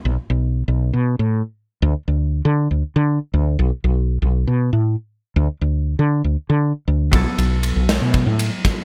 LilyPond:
<<
  \new Staff \with { instrumentName = "Hollow-body jazz guitar" } { \time 7/8 \key a \mixolydian \tempo 4 = 119 r2. r8 | r2. r8 | r2. r8 | r2. r8 |
<fis b e' a'>2.~ <fis b e' a'>8 | }
  \new Staff \with { instrumentName = "Fretless electric bass" } { \clef bass \time 7/8 \key a \mixolydian b,,16 r16 b,,8. b,,8 b,8 a,8 r8. | d,16 r16 d,8. d8 d,16 r16 d8 r16 d,8 | b,,16 r16 b,,8. b,,8 b,8 a,8 r8. | d,16 r16 d,8. d8 d,16 r16 d8 r16 d,8 |
b,,16 r16 b,,8. b,,8 b,8 a,8 r8. | }
  \new DrumStaff \with { instrumentName = "Drums" } \drummode { \time 7/8 r4. r4 r4 | r4. r4 r4 | r4. r4 r4 | r4. r4 r4 |
<bd cymr>8 cymr8 cymr8 <cymr sn>8 <bd cymr>8 cymr8 <bd cymr sn>8 | }
>>